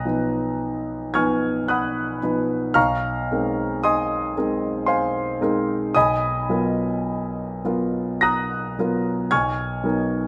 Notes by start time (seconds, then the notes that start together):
Already playing: B1 A#5 D#6 F#6 A#6
0.05 F3 B3 D#4 B4
1.14 F3 B3 D#4 B4 G#5 C#6 F6 G#6
1.68 F#5 B5 D#6 F#6
2.23 F3 B3 D#4 B4
2.74 B1 F5 A#5 C#6 F6
3.31 G#3 C4 D#4 A#4
3.83 D#5 G#5 C6 D#6
4.37 G#3 C4 D#4 A#4
4.86 C5 F5 G#5 C6
5.41 G#3 C4 D#4 A#4
5.94 B1 D#5 G#5 B5 D#6
6.49 F#3 B3 F4 A#4
7.64 F#3 B3 F4 A#4
8.21 A#5 D#6 F#6 A#6
8.79 F#3 B3 F4 A#4
9.31 B1 G#5 C#6 F6 G#6
9.83 F#3 B3 D#4 A#4